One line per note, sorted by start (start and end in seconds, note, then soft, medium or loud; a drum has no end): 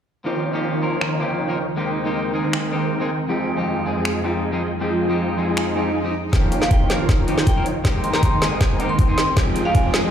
0.24 3.26 D#2 medium
0.24 1.76 C#3 medium
0.24 0.61 D#3 medium
0.24 3.26 D#3 medium
0.24 0.51 F3 medium
0.24 1.76 F3 medium
0.24 0.52 A#3 medium
0.24 0.52 C4 medium
0.24 0.52 C#4 medium
0.24 0.61 D#4 medium
0.24 0.61 F4 medium
0.24 0.52 G4 medium
0.24 0.61 C5 medium
0.24 0.61 C#5 medium
0.24 0.61 G5 medium
0.24 6.29 G5 medium
0.24 1.76 C6 medium
0.53 0.80 F3 medium
0.53 0.80 A#3 medium
0.53 0.80 C4 medium
0.53 0.80 C#4 medium
0.53 0.81 G4 medium
0.63 0.80 D#3 medium
0.63 0.80 D#4 medium
0.63 0.80 F4 medium
0.63 0.80 C5 medium
0.63 0.80 C#5 medium
0.63 0.80 G5 medium
0.81 0.90 D#3 medium
0.81 1.18 F3 medium
0.81 1.18 A#3 medium
0.81 1.18 C4 medium
0.81 1.18 C#4 medium
0.81 0.90 D#4 medium
0.81 0.90 F4 medium
0.81 1.19 A#4 medium
0.81 0.90 C5 medium
0.81 0.90 C#5 medium
0.81 0.90 A#5 medium
0.92 1.18 D#3 medium
0.92 1.18 D#4 medium
0.92 1.18 F4 medium
0.92 1.18 C5 medium
0.92 1.18 C#5 medium
0.92 1.18 A#5 medium
1.01 finger snap medium
1.19 1.56 D#3 medium
1.19 1.46 F3 medium
1.19 1.46 A#3 medium
1.19 1.47 C4 medium
1.19 1.47 C#4 medium
1.19 1.56 D#4 medium
1.19 1.56 F4 medium
1.19 1.47 G4 medium
1.19 1.56 C5 medium
1.19 1.56 C#5 medium
1.19 1.56 G5 medium
1.48 1.57 F3 medium
1.48 1.57 A#3 medium
1.48 1.57 C4 medium
1.48 1.58 C#4 medium
1.48 1.58 A#4 medium
1.58 1.67 D#3 medium
1.58 1.67 D#4 medium
1.58 1.67 F4 medium
1.58 1.67 C5 medium
1.58 1.67 C#5 medium
1.58 1.67 G5 medium
1.76 2.13 D#3 medium
1.76 2.03 G#3 medium
1.76 2.03 A#3 medium
1.76 2.04 C4 medium
1.76 3.28 C4 medium
1.76 2.13 D#4 medium
1.76 2.04 D#4 medium
1.76 2.04 G4 medium
1.76 2.13 A#4 medium
1.76 3.28 A#4 medium
1.76 2.13 C5 medium
1.76 2.13 G5 medium
2.05 2.31 G#3 medium
2.05 2.32 A#3 medium
2.05 2.32 C4 medium
2.05 2.32 D#4 medium
2.05 2.33 G4 medium
2.15 2.32 D#3 medium
2.15 2.32 D#4 medium
2.15 2.32 A#4 medium
2.15 2.32 C5 medium
2.15 2.32 G5 medium
2.33 2.42 D#3 medium
2.33 2.70 G#3 medium
2.33 2.70 A#3 medium
2.33 2.70 C4 medium
2.33 2.42 D#4 medium
2.33 2.70 D#4 medium
2.33 2.71 G#4 medium
2.33 2.42 A#4 medium
2.33 2.42 C5 medium
2.33 2.42 G#5 medium
2.44 2.70 D#3 medium
2.44 2.70 D#4 medium
2.44 2.70 A#4 medium
2.44 2.70 C5 medium
2.44 2.70 G#5 medium
2.53 finger snap medium
2.71 3.08 D#3 medium
2.71 2.98 G#3 medium
2.71 2.98 A#3 medium
2.71 2.99 C4 medium
2.71 3.08 D#4 medium
2.71 2.99 D#4 medium
2.71 2.99 G4 medium
2.71 3.08 A#4 medium
2.71 3.08 C5 medium
2.71 3.08 G5 medium
3.00 3.09 G#3 medium
3.00 3.09 A#3 medium
3.00 3.09 C4 medium
3.00 3.10 D#4 medium
3.00 3.10 G#4 medium
3.10 3.19 D#3 medium
3.10 3.19 D#4 medium
3.10 3.19 A#4 medium
3.10 3.19 C5 medium
3.10 3.19 G5 medium
3.28 6.30 F2 medium
3.28 3.55 F3 medium
3.28 6.30 F3 medium
3.28 3.65 F3 medium
3.28 3.55 G#3 medium
3.28 3.55 C4 medium
3.28 6.30 D#4 medium
3.28 3.56 D#4 medium
3.28 3.65 F4 medium
3.28 3.56 G4 medium
3.28 6.30 G#4 medium
3.28 3.65 G#4 medium
3.28 3.65 D#5 medium
3.28 3.65 G5 medium
3.57 3.83 F3 medium
3.57 3.84 G#3 medium
3.57 3.84 C4 medium
3.57 3.84 D#4 medium
3.57 3.84 G4 medium
3.67 3.84 F3 medium
3.67 3.84 F4 medium
3.67 3.84 G#4 medium
3.67 3.84 D#5 medium
3.67 3.84 G5 medium
3.85 4.21 F3 medium
3.85 3.93 F3 medium
3.85 4.22 G#3 medium
3.85 4.22 C4 medium
3.85 4.22 D#4 medium
3.85 3.94 F4 medium
3.85 3.93 G#4 medium
3.85 4.22 G#4 medium
3.85 3.93 D#5 medium
3.85 3.93 G#5 medium
3.96 4.22 F3 medium
3.96 4.22 F4 medium
3.96 4.22 G#4 medium
3.96 4.22 D#5 medium
3.96 4.22 G#5 medium
4.05 finger snap medium
4.23 4.50 F3 medium
4.23 4.60 F3 medium
4.23 4.50 G#3 medium
4.23 4.50 C4 medium
4.23 4.51 D#4 medium
4.23 4.60 F4 medium
4.23 4.51 G4 medium
4.23 4.60 G#4 medium
4.23 4.60 D#5 medium
4.23 4.60 G5 medium
4.52 4.61 F3 medium
4.52 4.61 G#3 medium
4.52 4.61 C4 medium
4.52 4.62 D#4 medium
4.52 4.62 G#4 medium
4.62 4.71 F3 medium
4.62 4.71 F4 medium
4.62 4.71 G#4 medium
4.62 4.71 D#5 medium
4.62 4.71 G5 medium
4.80 5.07 F3 medium
4.80 5.17 F3 medium
4.80 5.07 G#3 medium
4.80 5.07 C4 medium
4.80 5.08 D#4 medium
4.80 5.17 F4 medium
4.80 5.08 G4 medium
4.80 5.17 G#4 medium
4.80 5.17 D#5 medium
4.80 5.17 G5 medium
5.09 5.35 F3 medium
5.09 5.36 G#3 medium
5.09 5.36 C4 medium
5.09 5.36 D#4 medium
5.09 5.36 G4 medium
5.19 5.36 F3 medium
5.19 5.36 F4 medium
5.19 5.36 G#4 medium
5.19 5.36 D#5 medium
5.19 5.36 G5 medium
5.37 5.73 F3 medium
5.37 5.45 F3 medium
5.37 5.74 G#3 medium
5.37 5.74 C4 medium
5.37 5.74 D#4 medium
5.37 5.45 F4 medium
5.37 5.45 G#4 medium
5.37 5.74 G#4 medium
5.37 5.45 D#5 medium
5.37 5.45 G#5 medium
5.48 5.74 F3 medium
5.48 5.74 F4 medium
5.48 5.74 G#4 medium
5.48 5.74 D#5 medium
5.48 5.74 G#5 medium
5.57 finger snap medium
5.57 swell medium
5.75 5.90 F3 medium
5.75 5.84 F3 medium
5.75 5.90 G#3 medium
5.75 5.90 C4 medium
5.75 5.90 D#4 medium
5.75 5.84 F4 medium
5.75 5.91 G4 medium
5.75 5.84 G#4 medium
5.75 5.84 D#5 medium
5.75 5.84 G#5 loud
5.86 5.99 F3 medium
5.86 5.99 F4 medium
5.86 5.99 G#4 medium
5.86 5.99 D#5 medium
5.86 5.99 G#5 medium
6.04 6.13 F3 medium
6.04 6.13 G#3 medium
6.04 6.13 C4 medium
6.04 6.13 D#4 medium
6.04 6.14 G4 medium
6.32 9.34 D#2 medium
6.32 7.83 C#3 medium
6.32 6.69 D#3 medium
6.32 9.34 D#3 medium
6.32 6.59 F3 medium
6.32 7.83 F3 medium
6.32 6.59 A#3 medium
6.32 6.59 C4 medium
6.32 6.60 C#4 medium
6.32 6.69 D#4 medium
6.32 6.69 F4 medium
6.32 6.60 G4 medium
6.32 6.69 C5 medium
6.32 6.69 C#5 medium
6.32 6.69 G5 medium
6.32 10.11 G5 medium
6.32 7.83 C6 medium
6.32 kick medium
6.32 snare soft
6.32 closed hi-hat medium
6.32 riser medium
6.52 closed hi-hat medium
6.61 6.87 F3 medium
6.61 6.87 A#3 medium
6.61 6.88 C4 medium
6.61 6.88 C#4 medium
6.61 6.88 G4 medium
6.61 6.69 F5 medium
6.61 snare soft
6.71 6.88 D#3 medium
6.71 6.88 D#4 medium
6.71 6.88 F4 medium
6.71 6.88 C5 medium
6.71 6.88 C#5 medium
6.71 6.88 G5 medium
6.71 6.82 G5 medium
6.71 kick medium
6.71 closed hi-hat medium
6.89 6.97 D#3 medium
6.89 7.25 F3 medium
6.89 7.25 A#3 medium
6.89 7.26 C4 medium
6.89 7.26 C#4 medium
6.89 6.97 D#4 medium
6.89 6.97 F4 medium
6.89 7.26 A#4 medium
6.89 6.97 C5 medium
6.89 6.97 C#5 medium
6.89 6.97 A#5 medium
6.89 snare soft
6.89 closed hi-hat medium
6.99 7.26 D#3 medium
6.99 7.26 D#4 medium
6.99 7.26 F4 medium
6.99 7.26 C5 medium
6.99 7.26 C#5 medium
6.99 7.26 A#5 medium
7.09 kick medium
7.09 snare soft
7.09 closed hi-hat medium
7.27 7.64 D#3 medium
7.27 7.54 F3 medium
7.27 7.54 A#3 medium
7.27 7.54 C4 medium
7.27 7.54 C#4 medium
7.27 7.64 D#4 medium
7.27 7.64 F4 medium
7.27 7.55 G4 medium
7.27 7.64 C5 medium
7.27 7.64 C#5 medium
7.27 7.64 G5 medium
7.27 closed hi-hat medium
7.38 snare soft
7.47 7.58 G5 medium
7.47 kick medium
7.47 closed hi-hat medium
7.55 7.65 F3 medium
7.55 7.65 A#3 medium
7.55 7.65 C4 medium
7.55 7.65 C#4 medium
7.55 7.66 A#4 medium
7.66 7.75 D#3 medium
7.66 7.75 D#4 medium
7.66 7.75 F4 medium
7.66 7.75 C5 medium
7.66 7.75 C#5 medium
7.66 7.75 G5 medium
7.66 closed hi-hat medium
7.84 8.21 D#3 medium
7.84 8.11 G#3 medium
7.84 8.11 A#3 medium
7.84 8.11 C4 medium
7.84 9.35 C4 medium
7.84 8.21 D#4 medium
7.84 8.11 D#4 medium
7.84 8.12 G4 medium
7.84 8.21 A#4 medium
7.84 9.35 A#4 medium
7.84 8.21 C5 medium
7.84 8.21 G5 medium
7.84 kick medium
7.84 snare medium
7.84 closed hi-hat medium
8.04 8.12 C6 medium
8.04 closed hi-hat medium
8.12 8.39 G#3 medium
8.12 8.39 A#3 medium
8.12 8.40 C4 medium
8.12 8.40 D#4 medium
8.12 8.40 G4 medium
8.12 8.21 A#5 medium
8.12 snare soft
8.23 8.39 D#3 medium
8.23 8.39 D#4 medium
8.23 8.39 A#4 medium
8.23 8.39 C5 medium
8.23 8.39 G5 medium
8.23 8.34 C6 medium
8.23 kick medium
8.23 closed hi-hat medium
8.41 8.49 D#3 medium
8.41 8.77 G#3 medium
8.41 8.77 A#3 medium
8.41 8.78 C4 medium
8.41 8.49 D#4 medium
8.41 8.78 D#4 medium
8.41 8.78 G#4 medium
8.41 8.49 A#4 medium
8.41 8.49 C5 medium
8.41 8.49 G#5 medium
8.41 snare medium
8.41 closed hi-hat medium
8.51 8.77 D#3 medium
8.51 8.77 D#4 medium
8.51 8.78 A#4 medium
8.51 8.77 C5 medium
8.51 8.77 G#5 medium
8.61 kick medium
8.61 snare medium
8.61 closed hi-hat medium
8.79 9.15 D#3 medium
8.79 9.06 G#3 medium
8.79 9.06 A#3 medium
8.79 9.06 C4 medium
8.79 9.15 D#4 medium
8.79 9.06 D#4 medium
8.79 9.07 G4 medium
8.79 9.15 A#4 medium
8.79 9.15 C5 medium
8.79 9.15 G5 medium
8.79 closed hi-hat medium
8.89 9.41 C6 medium
8.99 kick medium
8.99 closed hi-hat medium
9.07 9.16 G#3 medium
9.07 9.17 A#3 medium
9.07 9.17 C4 medium
9.07 9.17 D#4 medium
9.07 9.17 G#4 medium
9.18 9.27 D#3 medium
9.18 9.27 D#4 medium
9.18 9.26 A#4 medium
9.18 9.26 C5 medium
9.18 9.27 G5 medium
9.18 snare medium
9.18 closed hi-hat medium
9.36 10.11 F2 medium
9.36 9.63 F3 medium
9.36 9.72 F3 medium
9.36 10.11 F3 medium
9.36 9.63 G#3 medium
9.36 9.63 C4 medium
9.36 10.11 D#4 medium
9.36 9.63 D#4 medium
9.36 9.72 F4 medium
9.36 9.64 G4 medium
9.36 10.11 G#4 medium
9.36 9.72 G#4 medium
9.36 9.72 D#5 medium
9.36 9.72 G5 medium
9.36 kick medium
9.36 snare medium
9.36 closed hi-hat medium
9.56 closed hi-hat medium
9.64 9.91 F3 medium
9.64 9.91 G#3 medium
9.64 9.91 C4 medium
9.64 9.92 D#4 medium
9.64 9.92 G4 loud
9.64 9.73 F5 medium
9.75 9.91 F3 medium
9.75 9.91 F4 medium
9.75 9.91 G#4 medium
9.75 9.91 D#5 medium
9.75 9.91 G5 medium
9.75 9.86 G#5 medium
9.75 kick medium
9.75 closed hi-hat medium
9.93 10.11 F3 medium
9.93 10.01 F3 medium
9.93 10.11 G#3 medium
9.93 10.11 C4 medium
9.93 10.11 D#4 medium
9.93 10.01 F4 medium
9.93 10.01 G#4 medium
9.93 10.11 G#4 medium
9.93 10.01 D#5 medium
9.93 10.01 G#5 medium
9.93 snare medium
9.93 closed hi-hat medium
10.03 10.11 F3 medium
10.03 10.11 F4 medium
10.03 10.11 G#4 medium
10.03 10.11 D#5 medium
10.03 10.11 G#5 loud